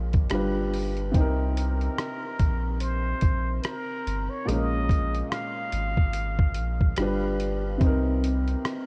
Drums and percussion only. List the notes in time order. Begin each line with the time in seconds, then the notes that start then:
0.13 kick, closed hi-hat
0.30 cross-stick, closed hi-hat
0.74 open hi-hat
0.97 closed hi-hat
1.14 kick, closed hi-hat
1.57 closed hi-hat
1.81 closed hi-hat
1.98 cross-stick, closed hi-hat
2.39 kick, closed hi-hat
2.80 closed hi-hat
3.21 kick, closed hi-hat
3.64 cross-stick, closed hi-hat
4.07 closed hi-hat
4.49 closed hi-hat
4.89 kick, closed hi-hat
5.14 closed hi-hat
5.32 cross-stick, closed hi-hat
5.72 closed hi-hat
5.97 kick
6.13 closed hi-hat
6.39 kick
6.54 closed hi-hat
6.81 kick
6.96 cross-stick, closed hi-hat
7.40 closed hi-hat
7.81 kick, closed hi-hat
8.24 closed hi-hat
8.48 closed hi-hat
8.65 cross-stick, closed hi-hat